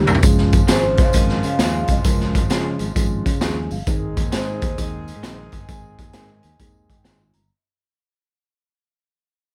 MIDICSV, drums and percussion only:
0, 0, Header, 1, 2, 480
1, 0, Start_track
1, 0, Key_signature, -4, "major"
1, 0, Tempo, 454270
1, 244, Time_signature, 4, 2, 24, 8
1, 10087, End_track
2, 0, Start_track
2, 0, Title_t, "Drums"
2, 76, Note_on_c, 9, 45, 93
2, 77, Note_on_c, 9, 54, 54
2, 155, Note_on_c, 9, 43, 97
2, 182, Note_off_c, 9, 45, 0
2, 183, Note_off_c, 9, 54, 0
2, 237, Note_on_c, 9, 42, 104
2, 242, Note_on_c, 9, 54, 94
2, 245, Note_on_c, 9, 36, 115
2, 261, Note_off_c, 9, 43, 0
2, 342, Note_off_c, 9, 42, 0
2, 348, Note_off_c, 9, 54, 0
2, 351, Note_off_c, 9, 36, 0
2, 399, Note_on_c, 9, 38, 35
2, 505, Note_off_c, 9, 38, 0
2, 554, Note_on_c, 9, 42, 79
2, 558, Note_on_c, 9, 54, 66
2, 562, Note_on_c, 9, 36, 103
2, 659, Note_off_c, 9, 42, 0
2, 664, Note_off_c, 9, 54, 0
2, 668, Note_off_c, 9, 36, 0
2, 718, Note_on_c, 9, 54, 97
2, 719, Note_on_c, 9, 42, 110
2, 723, Note_on_c, 9, 38, 115
2, 823, Note_off_c, 9, 54, 0
2, 825, Note_off_c, 9, 42, 0
2, 829, Note_off_c, 9, 38, 0
2, 1027, Note_on_c, 9, 42, 75
2, 1033, Note_on_c, 9, 54, 51
2, 1039, Note_on_c, 9, 36, 117
2, 1133, Note_off_c, 9, 42, 0
2, 1139, Note_off_c, 9, 54, 0
2, 1145, Note_off_c, 9, 36, 0
2, 1192, Note_on_c, 9, 54, 102
2, 1201, Note_on_c, 9, 42, 99
2, 1206, Note_on_c, 9, 36, 99
2, 1298, Note_off_c, 9, 54, 0
2, 1306, Note_off_c, 9, 42, 0
2, 1312, Note_off_c, 9, 36, 0
2, 1362, Note_on_c, 9, 38, 36
2, 1468, Note_off_c, 9, 38, 0
2, 1511, Note_on_c, 9, 54, 56
2, 1520, Note_on_c, 9, 42, 75
2, 1617, Note_off_c, 9, 54, 0
2, 1625, Note_off_c, 9, 42, 0
2, 1679, Note_on_c, 9, 38, 126
2, 1683, Note_on_c, 9, 54, 98
2, 1686, Note_on_c, 9, 42, 99
2, 1785, Note_off_c, 9, 38, 0
2, 1789, Note_off_c, 9, 54, 0
2, 1791, Note_off_c, 9, 42, 0
2, 1981, Note_on_c, 9, 42, 69
2, 1993, Note_on_c, 9, 36, 77
2, 1997, Note_on_c, 9, 54, 48
2, 2087, Note_off_c, 9, 42, 0
2, 2099, Note_off_c, 9, 36, 0
2, 2102, Note_off_c, 9, 54, 0
2, 2158, Note_on_c, 9, 42, 95
2, 2160, Note_on_c, 9, 54, 97
2, 2163, Note_on_c, 9, 36, 117
2, 2264, Note_off_c, 9, 42, 0
2, 2265, Note_off_c, 9, 54, 0
2, 2269, Note_off_c, 9, 36, 0
2, 2327, Note_on_c, 9, 38, 33
2, 2432, Note_off_c, 9, 38, 0
2, 2482, Note_on_c, 9, 42, 85
2, 2483, Note_on_c, 9, 36, 91
2, 2484, Note_on_c, 9, 54, 64
2, 2588, Note_off_c, 9, 42, 0
2, 2589, Note_off_c, 9, 36, 0
2, 2589, Note_off_c, 9, 54, 0
2, 2640, Note_on_c, 9, 54, 99
2, 2645, Note_on_c, 9, 42, 113
2, 2649, Note_on_c, 9, 38, 117
2, 2745, Note_off_c, 9, 54, 0
2, 2750, Note_off_c, 9, 42, 0
2, 2754, Note_off_c, 9, 38, 0
2, 2948, Note_on_c, 9, 42, 75
2, 2961, Note_on_c, 9, 54, 52
2, 3054, Note_off_c, 9, 42, 0
2, 3067, Note_off_c, 9, 54, 0
2, 3126, Note_on_c, 9, 42, 90
2, 3127, Note_on_c, 9, 54, 91
2, 3128, Note_on_c, 9, 36, 101
2, 3231, Note_off_c, 9, 42, 0
2, 3233, Note_off_c, 9, 54, 0
2, 3234, Note_off_c, 9, 36, 0
2, 3443, Note_on_c, 9, 36, 91
2, 3444, Note_on_c, 9, 42, 72
2, 3444, Note_on_c, 9, 54, 60
2, 3549, Note_off_c, 9, 36, 0
2, 3550, Note_off_c, 9, 42, 0
2, 3550, Note_off_c, 9, 54, 0
2, 3604, Note_on_c, 9, 38, 127
2, 3604, Note_on_c, 9, 54, 88
2, 3611, Note_on_c, 9, 42, 95
2, 3710, Note_off_c, 9, 38, 0
2, 3710, Note_off_c, 9, 54, 0
2, 3716, Note_off_c, 9, 42, 0
2, 3914, Note_on_c, 9, 46, 49
2, 3922, Note_on_c, 9, 54, 47
2, 4020, Note_off_c, 9, 46, 0
2, 4028, Note_off_c, 9, 54, 0
2, 4088, Note_on_c, 9, 42, 94
2, 4088, Note_on_c, 9, 54, 97
2, 4090, Note_on_c, 9, 36, 121
2, 4193, Note_off_c, 9, 42, 0
2, 4193, Note_off_c, 9, 54, 0
2, 4195, Note_off_c, 9, 36, 0
2, 4402, Note_on_c, 9, 42, 82
2, 4407, Note_on_c, 9, 36, 96
2, 4411, Note_on_c, 9, 54, 59
2, 4508, Note_off_c, 9, 42, 0
2, 4513, Note_off_c, 9, 36, 0
2, 4517, Note_off_c, 9, 54, 0
2, 4566, Note_on_c, 9, 42, 119
2, 4567, Note_on_c, 9, 54, 94
2, 4570, Note_on_c, 9, 38, 111
2, 4672, Note_off_c, 9, 42, 0
2, 4672, Note_off_c, 9, 54, 0
2, 4676, Note_off_c, 9, 38, 0
2, 4877, Note_on_c, 9, 42, 77
2, 4884, Note_on_c, 9, 36, 108
2, 4891, Note_on_c, 9, 54, 47
2, 4983, Note_off_c, 9, 42, 0
2, 4990, Note_off_c, 9, 36, 0
2, 4997, Note_off_c, 9, 54, 0
2, 5051, Note_on_c, 9, 54, 102
2, 5053, Note_on_c, 9, 36, 101
2, 5053, Note_on_c, 9, 42, 89
2, 5157, Note_off_c, 9, 54, 0
2, 5159, Note_off_c, 9, 36, 0
2, 5159, Note_off_c, 9, 42, 0
2, 5365, Note_on_c, 9, 54, 61
2, 5367, Note_on_c, 9, 42, 75
2, 5471, Note_off_c, 9, 54, 0
2, 5473, Note_off_c, 9, 42, 0
2, 5529, Note_on_c, 9, 38, 124
2, 5531, Note_on_c, 9, 54, 96
2, 5535, Note_on_c, 9, 42, 107
2, 5634, Note_off_c, 9, 38, 0
2, 5637, Note_off_c, 9, 54, 0
2, 5641, Note_off_c, 9, 42, 0
2, 5832, Note_on_c, 9, 42, 73
2, 5841, Note_on_c, 9, 36, 80
2, 5843, Note_on_c, 9, 54, 49
2, 5937, Note_off_c, 9, 42, 0
2, 5946, Note_off_c, 9, 36, 0
2, 5949, Note_off_c, 9, 54, 0
2, 6006, Note_on_c, 9, 42, 93
2, 6007, Note_on_c, 9, 54, 92
2, 6010, Note_on_c, 9, 36, 126
2, 6112, Note_off_c, 9, 42, 0
2, 6113, Note_off_c, 9, 54, 0
2, 6115, Note_off_c, 9, 36, 0
2, 6323, Note_on_c, 9, 42, 78
2, 6326, Note_on_c, 9, 36, 97
2, 6334, Note_on_c, 9, 54, 63
2, 6428, Note_off_c, 9, 42, 0
2, 6432, Note_off_c, 9, 36, 0
2, 6440, Note_off_c, 9, 54, 0
2, 6478, Note_on_c, 9, 42, 111
2, 6482, Note_on_c, 9, 38, 119
2, 6493, Note_on_c, 9, 54, 92
2, 6584, Note_off_c, 9, 42, 0
2, 6588, Note_off_c, 9, 38, 0
2, 6598, Note_off_c, 9, 54, 0
2, 6791, Note_on_c, 9, 42, 70
2, 6806, Note_on_c, 9, 54, 46
2, 6897, Note_off_c, 9, 42, 0
2, 6912, Note_off_c, 9, 54, 0
2, 6965, Note_on_c, 9, 42, 90
2, 6969, Note_on_c, 9, 54, 98
2, 6970, Note_on_c, 9, 36, 96
2, 7071, Note_off_c, 9, 42, 0
2, 7075, Note_off_c, 9, 36, 0
2, 7075, Note_off_c, 9, 54, 0
2, 7286, Note_on_c, 9, 54, 57
2, 7287, Note_on_c, 9, 36, 83
2, 7288, Note_on_c, 9, 42, 72
2, 7392, Note_off_c, 9, 36, 0
2, 7392, Note_off_c, 9, 54, 0
2, 7394, Note_off_c, 9, 42, 0
2, 7444, Note_on_c, 9, 38, 125
2, 7449, Note_on_c, 9, 54, 94
2, 7451, Note_on_c, 9, 42, 104
2, 7550, Note_off_c, 9, 38, 0
2, 7554, Note_off_c, 9, 54, 0
2, 7557, Note_off_c, 9, 42, 0
2, 7749, Note_on_c, 9, 42, 69
2, 7763, Note_on_c, 9, 54, 48
2, 7855, Note_off_c, 9, 42, 0
2, 7869, Note_off_c, 9, 54, 0
2, 10087, End_track
0, 0, End_of_file